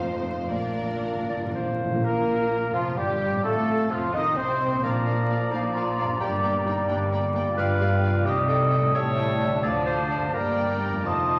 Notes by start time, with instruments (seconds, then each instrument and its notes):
Already playing: double bass section F1, cello section F2, harp F2 F3 F4, viola section A3 D#4, violin section C5
0.00 harp A3, violin section C5
0.24 harp D#4 F4
0.50 double bass section A#1, cello section A#2, harp A#2, viola section A#3 D4, violin section A#4 D5
0.59 timpani A#2
0.67 timpani A#2
0.75 timpani A#2, harp F3
0.83 timpani A#2
0.90 timpani A#2
0.99 timpani A#2
1.03 timpani A#2, harp A#3
1.15 timpani A#2
1.22 timpani A#2
1.28 cello section G2, timpani A#2, harp D4, clarinet D5
1.37 timpani A#2
1.45 timpani A#2
1.53 cello section F2, timpani A#2, harp F4, clarinet C5
1.60 timpani A#2
1.69 timpani A#2
1.76 cello section A2, timpani A#2, harp A#3
1.85 timpani A#2, harp A#2
1.91 timpani A#2, harp A#3
1.95 harp D4
2.00 double bass section A#1, harp F4
2.04 cello section A#2, viola section A#3, french horn section A#3, bassoon A#3, violin section A#4, flute section A#4, oboe A#4, clarinet A#4
2.73 double bass section F1, cello section F2, viola section F3, bassoon F3, french horn section F3, violin section F4, oboe F4, clarinet F4, flute section F4
2.96 double bass section G1, cello section G2, bassoon G3, viola section G3, french horn section G3, oboe G4, clarinet G4, flute section G4, violin section G4
3.26 harp A2
3.31 harp C4
3.35 harp D#4
3.40 double bass section A1, harp F4, oboe A4, clarinet A4
3.44 cello section A2, french horn section A3, viola section A3, bassoon A3, flute section A4, violin section A4
3.90 double bass section F1, cello section F2, viola section F3, bassoon F3, french horn section F3, flute section F4, oboe F4, clarinet F4, violin section F4
4.13 double bass section D#2, cello section D#3, viola section D#4, bassoon D#4, french horn section D#4, flute section D#5, clarinet D#5, oboe D#5, violin section D#5
4.36 double bass section C2, cello section C3, viola section C4, bassoon C4, french horn section C4, clarinet C5, flute section C5, oboe C5, violin section C5
4.65 harp A#2
4.70 harp A#3
4.74 harp D4
4.79 viola section A#3, harp F4
4.83 double bass section A#1, timpani A#2, cello section A#2, bassoon F3, french horn section F3 D4, clarinet A#4, oboe D5, violin section D5 F5, flute section A#5
5.06 viola section A#3, violin section D5 F5
5.30 viola section A#3, violin section D5 F5
5.52 double bass section A#1, cello section A#2, viola section A#3, clarinet D#4, violin section D5 F5
5.75 viola section A#3, clarinet F4, violin section D5 F5
5.98 viola section A#3, violin section D5 F5
6.03 harp G2
6.08 harp A#3
6.12 harp D4
6.17 harp G4
6.21 double bass section G1, cello section G2, bassoon G3, french horn section A#3, viola section A#3, clarinet G4, violin section D5 G5
6.43 viola section A#3, violin section D5 G5
6.66 viola section A#3, clarinet D#4, violin section D5 G5
6.89 double bass section G1, cello section G2, viola section A#3, clarinet D4, violin section D5 G5
7.12 viola section A#3, violin section D5 G5
7.34 viola section A#3, violin section D5 G5
7.40 harp G2
7.44 harp G3
7.49 harp F4
7.53 double bass section G1, viola section G3, harp G4, clarinet B4, flute section G5
7.58 cello section G2, bassoon G3, french horn section G3 F4, violin section D5 F5, oboe F5
7.80 viola section G3, violin section D5 F5
8.03 viola section G3, violin section D5 F5
8.08 harp C3
8.13 harp G3
8.17 harp D#4
8.22 bassoon G3, harp G4, clarinet G4, flute section G5
8.26 double bass section C2, cello section C3, viola section G3, french horn section D#4, violin section D#5 G5, oboe D#5
8.48 viola section G3, clarinet A4, violin section D#5 G5
8.71 viola section G3, violin section D#5 G5
8.77 harp A2
8.81 harp A3
8.86 harp E4
8.90 french horn section E4, harp G4, violin section G5, flute section A5
8.94 double bass section A1, cello section A2, bassoon G3, viola section A3, clarinet C#5, violin section E5, oboe E5
9.16 viola section A3, violin section E5 G5
9.40 viola section A3, violin section E5 G5
9.46 harp D3
9.50 harp A3
9.54 harp D4
9.59 french horn section F3 D4, viola section A3, harp F4, flute section A5
9.63 double bass section D2, cello section D3, bassoon F3, clarinet D5, violin section D5 F5, oboe D5
9.86 viola section A3, clarinet C5, violin section D5 F5
10.10 viola section A3, violin section D5 F5
10.16 harp G2
10.20 harp A#3
10.25 harp D4
10.29 french horn section G3, harp G4, violin section D5, flute section A#5
10.34 double bass section G1, cello section G2, bassoon G3, viola section A#3, clarinet A#4, oboe D5, violin section G5
10.88 harp F2
10.92 harp C4
10.96 harp D#4
11.01 harp A4, flute section A5
11.05 double bass section F1, cello section F2, bassoon F3, french horn section A3 D#4, viola section C4, clarinet F4, violin section D#5 A5, oboe D#5